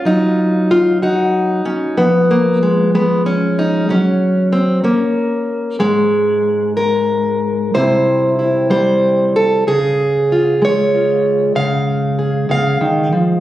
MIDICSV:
0, 0, Header, 1, 2, 480
1, 0, Start_track
1, 0, Tempo, 637620
1, 43, Time_signature, 6, 3, 24, 8
1, 4362, Tempo, 645856
1, 7242, Tempo, 629591
1, 10087, End_track
2, 0, Start_track
2, 0, Title_t, "Steel-string acoustic guitar"
2, 0, Program_c, 0, 25
2, 0, Note_on_c, 0, 65, 90
2, 39, Note_on_c, 0, 54, 59
2, 48, Note_on_c, 0, 63, 88
2, 525, Note_off_c, 0, 65, 0
2, 534, Note_on_c, 0, 65, 90
2, 765, Note_off_c, 0, 63, 0
2, 768, Note_off_c, 0, 65, 0
2, 771, Note_on_c, 0, 66, 62
2, 775, Note_on_c, 0, 63, 96
2, 1242, Note_off_c, 0, 54, 0
2, 1245, Note_on_c, 0, 61, 91
2, 1464, Note_off_c, 0, 66, 0
2, 1487, Note_on_c, 0, 59, 92
2, 1490, Note_off_c, 0, 61, 0
2, 1494, Note_off_c, 0, 63, 0
2, 1494, Note_on_c, 0, 53, 61
2, 1737, Note_on_c, 0, 58, 82
2, 1975, Note_off_c, 0, 58, 0
2, 1978, Note_on_c, 0, 56, 80
2, 2209, Note_off_c, 0, 56, 0
2, 2210, Note_off_c, 0, 59, 0
2, 2217, Note_on_c, 0, 56, 66
2, 2221, Note_on_c, 0, 59, 97
2, 2452, Note_off_c, 0, 59, 0
2, 2455, Note_on_c, 0, 61, 88
2, 2701, Note_on_c, 0, 63, 94
2, 2898, Note_off_c, 0, 53, 0
2, 2900, Note_off_c, 0, 56, 0
2, 2926, Note_on_c, 0, 54, 67
2, 2928, Note_off_c, 0, 61, 0
2, 2932, Note_off_c, 0, 63, 0
2, 2938, Note_on_c, 0, 61, 98
2, 3403, Note_off_c, 0, 61, 0
2, 3406, Note_on_c, 0, 60, 84
2, 3637, Note_off_c, 0, 60, 0
2, 3640, Note_off_c, 0, 54, 0
2, 3640, Note_on_c, 0, 61, 66
2, 3646, Note_on_c, 0, 58, 81
2, 4333, Note_off_c, 0, 61, 0
2, 4360, Note_on_c, 0, 44, 67
2, 4362, Note_off_c, 0, 58, 0
2, 4365, Note_on_c, 0, 56, 107
2, 5086, Note_on_c, 0, 70, 90
2, 5806, Note_off_c, 0, 44, 0
2, 5808, Note_off_c, 0, 56, 0
2, 5808, Note_off_c, 0, 70, 0
2, 5809, Note_on_c, 0, 48, 69
2, 5812, Note_on_c, 0, 55, 48
2, 5813, Note_on_c, 0, 72, 99
2, 5820, Note_on_c, 0, 60, 49
2, 5822, Note_on_c, 0, 64, 47
2, 6282, Note_off_c, 0, 64, 0
2, 6291, Note_on_c, 0, 64, 47
2, 6514, Note_off_c, 0, 55, 0
2, 6517, Note_off_c, 0, 72, 0
2, 6522, Note_on_c, 0, 55, 67
2, 6527, Note_on_c, 0, 72, 102
2, 7004, Note_off_c, 0, 72, 0
2, 7012, Note_on_c, 0, 69, 96
2, 7213, Note_off_c, 0, 55, 0
2, 7215, Note_off_c, 0, 48, 0
2, 7216, Note_off_c, 0, 64, 0
2, 7220, Note_off_c, 0, 60, 0
2, 7244, Note_on_c, 0, 49, 67
2, 7246, Note_off_c, 0, 69, 0
2, 7249, Note_on_c, 0, 68, 98
2, 7739, Note_on_c, 0, 65, 48
2, 7965, Note_on_c, 0, 56, 66
2, 7969, Note_off_c, 0, 68, 0
2, 7987, Note_on_c, 0, 73, 110
2, 8207, Note_off_c, 0, 65, 0
2, 8216, Note_on_c, 0, 65, 49
2, 8656, Note_off_c, 0, 65, 0
2, 8669, Note_off_c, 0, 49, 0
2, 8678, Note_on_c, 0, 49, 79
2, 8680, Note_off_c, 0, 73, 0
2, 8683, Note_on_c, 0, 77, 114
2, 9161, Note_on_c, 0, 68, 48
2, 9384, Note_off_c, 0, 49, 0
2, 9393, Note_on_c, 0, 49, 73
2, 9397, Note_off_c, 0, 77, 0
2, 9409, Note_on_c, 0, 77, 120
2, 9632, Note_off_c, 0, 49, 0
2, 9635, Note_on_c, 0, 51, 73
2, 9874, Note_off_c, 0, 51, 0
2, 9877, Note_on_c, 0, 53, 68
2, 10087, Note_off_c, 0, 53, 0
2, 10087, Note_off_c, 0, 56, 0
2, 10087, Note_off_c, 0, 68, 0
2, 10087, Note_off_c, 0, 77, 0
2, 10087, End_track
0, 0, End_of_file